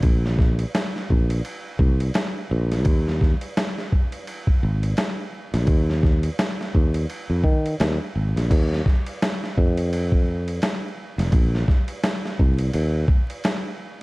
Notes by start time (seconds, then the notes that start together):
0.03 A#1, kick, ride
0.26 snare
0.39 kick, snare
0.59 ride
0.75 snare, hi-hat pedal, ride
0.96 snare
1.10 A#1, kick
1.30 ride
1.45 ride
1.79 C2, kick
2.00 ride
2.14 snare, hi-hat pedal, ride
2.51 A#1
2.72 snare, ride
2.85 D#2, kick, ride
3.08 snare
3.21 kick, snare
3.41 ride
3.57 snare, hi-hat pedal, ride
3.78 snare
3.93 kick
4.12 ride
4.27 ride
4.47 kick
4.63 G#1
4.83 ride
4.97 snare, hi-hat pedal, ride
5.54 A#1, snare, ride
5.67 D#2, kick, ride
5.90 snare
6.03 kick, snare
6.23 ride
6.39 snare, hi-hat pedal, ride
6.61 snare
6.75 D#2, kick
6.94 ride
7.10 ride
7.30 F2
7.44 D#3, kick
7.66 ride
7.80 D#2, snare, hi-hat pedal, ride
8.15 G#1
8.36 A#1, snare, ride
8.51 D#2, kick, crash, ride
8.73 snare
8.86 kick, snare
9.07 ride
9.22 snare, hi-hat pedal, ride
9.44 snare
9.58 F2, kick
9.77 ride
9.93 ride
10.12 kick
10.48 ride
10.62 snare, hi-hat pedal, ride
11.18 F1, snare, ride
11.32 A#1, kick, ride
11.55 snare
11.68 kick, snare
11.88 ride
12.03 snare, hi-hat pedal, ride
12.25 snare
12.39 C2, kick
12.59 ride
12.74 D#2, ride
13.08 kick
13.30 ride
13.44 snare, hi-hat pedal, ride